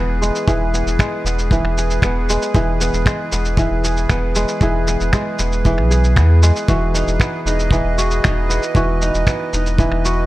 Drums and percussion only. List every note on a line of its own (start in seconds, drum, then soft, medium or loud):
0.22 shaker medium
0.35 shaker soft
0.48 kick loud
0.48 shaker soft
0.74 shaker medium
0.87 shaker soft
0.99 finger snap loud
0.99 kick medium
0.99 shaker soft
1.26 shaker medium
1.39 shaker soft
1.51 kick loud
1.51 shaker soft
1.65 finger snap soft
1.78 shaker medium
1.90 shaker soft
2.02 finger snap medium
2.02 kick medium
2.02 shaker soft
2.29 shaker medium
2.42 shaker soft
2.55 kick loud
2.55 shaker soft
2.81 shaker medium
2.94 shaker soft
3.06 finger snap medium
3.06 kick loud
3.06 shaker soft
3.32 shaker medium
3.45 shaker soft
3.57 kick loud
3.57 shaker soft
3.84 shaker medium
3.97 shaker soft
4.09 finger snap medium
4.09 kick loud
4.09 shaker soft
4.35 shaker medium
4.48 shaker soft
4.61 kick loud
4.61 shaker soft
4.87 shaker medium
5.00 shaker soft
5.13 finger snap medium
5.13 kick medium
5.13 shaker soft
5.39 shaker medium
5.52 shaker soft
5.65 kick medium
5.65 shaker soft
5.78 finger snap soft
5.91 shaker medium
6.04 shaker soft
6.16 finger snap medium
6.16 kick medium
6.16 shaker soft
6.43 shaker medium
6.56 shaker soft
6.68 kick loud
6.68 shaker soft
6.95 shaker medium
7.08 shaker soft
7.20 finger snap medium
7.20 kick medium
7.20 shaker soft
7.47 shaker medium
7.59 shaker soft
7.71 kick loud
7.71 shaker soft
7.98 shaker medium
8.11 shaker soft
8.24 finger snap medium
8.24 kick medium
8.24 shaker soft
8.50 shaker medium
8.63 shaker soft
8.75 kick loud
8.75 shaker soft
9.02 shaker medium
9.14 shaker soft
9.27 finger snap medium
9.27 kick medium
9.27 shaker soft
9.53 shaker medium
9.66 shaker soft
9.79 kick loud
9.79 shaker soft
9.92 finger snap soft
10.05 shaker medium